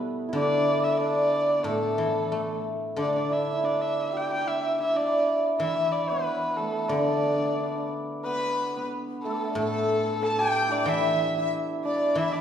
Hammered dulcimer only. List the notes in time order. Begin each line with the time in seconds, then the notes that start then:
Already playing: A3 B3 E4
0.29 E4
0.35 D4
1.00 D4
1.59 B3
1.68 A3
2.98 D4
3.16 D4
3.30 E4
3.57 E4
3.63 D4
4.12 G4
4.30 G4
4.46 E4
4.80 E4
4.95 D4
5.63 E4
6.11 B3
6.58 A3
6.92 D4
6.99 D4
7.07 D4
7.13 D4
7.20 D4
7.28 D4
7.36 D4
7.44 D4
7.53 D4
7.60 D4
7.68 D4
7.75 D4
8.26 B3
8.77 B3
9.25 A3
9.58 A3
10.22 A4
10.38 G4
10.68 D4 E4
10.88 E4
11.37 E4
11.85 D4
12.18 E4
12.34 D4